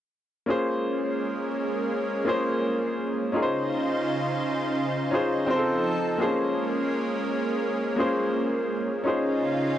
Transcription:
0.46 G#3 A#3 C#4 F4 G#4
0.50 C5
2.25 A#3 C#4 F4 G#4
2.29 C5
3.32 C#3 C#4 D#4 F4 G#4 C5
3.36 A#4
3.43 C5
5.11 C#4 D#4 F4 G#4
5.15 C5
5.46 F3 C4 D#4 F4 G#4 A4
5.51 C5
5.56 A4
6.18 G#3 A#3 C4 C#4 F4 G#4
6.22 C#4 C5
7.96 A#3 C#4 F4 G#4
8.00 C5
9.04 C#3 C#4 D#4 F4 G#4
9.08 C5

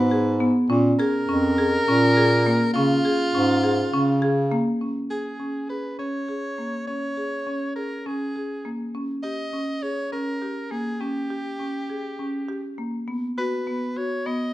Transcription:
Already playing: G#2 B4
0.11 G#4
0.40 B3
0.70 A#2 C#4
0.99 G#4 A#4
1.28 F2 C#4
1.58 G#4
1.87 A#2 C#4
2.17 G#4
2.46 A#3
2.74 C#3 C#4 F4
3.05 G#4
3.35 G#2 C#4
3.64 G#4
3.93 C#3 C#4
4.22 G#4
4.52 A#3
4.81 C#4
5.10 G#4
5.40 C#4
5.69 G#4 B4
5.99 C#4 C#5
6.29 G#4
6.58 A#3
6.88 C#4 C#5
7.17 G#4
7.47 C#4
7.76 G#4 A#4
8.06 C#4 G#4
8.36 G#4
8.65 A#3
8.95 C#4
9.23 G4 D#5
9.53 C#4
9.82 G#4 C#5
10.12 C#4 A#4
10.42 G4
10.71 A#3 G#4
11.00 C#4 G4
11.30 G4
11.60 C#4
11.90 G#4
12.19 C#4
12.49 G4
12.78 A#3
13.08 B3
13.38 F#4 B4
13.67 B3
13.97 F#4 C#5
14.26 B3 D#5

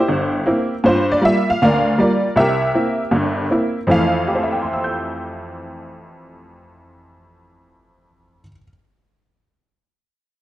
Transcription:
Already playing: G4 C5
0.00 E4
0.08 G1
0.46 A#3 C4 E4
0.84 G2 F4 C5
1.12 D5
1.21 G3 A#3 F4 E5
1.50 F5
1.62 D2 A#4 D5 F5
1.98 G3 A#3 F4 A#4 D5
2.36 C2 G4 A#4 E5
2.75 A#3 C4 E4
3.11 G1 G2
3.50 A#3 C4 E4
3.87 F2 E3 F3 A3
3.91 F5
4.28 G4
4.35 C5
4.43 E5
4.52 G5
4.62 C6
4.73 E6
4.84 G6

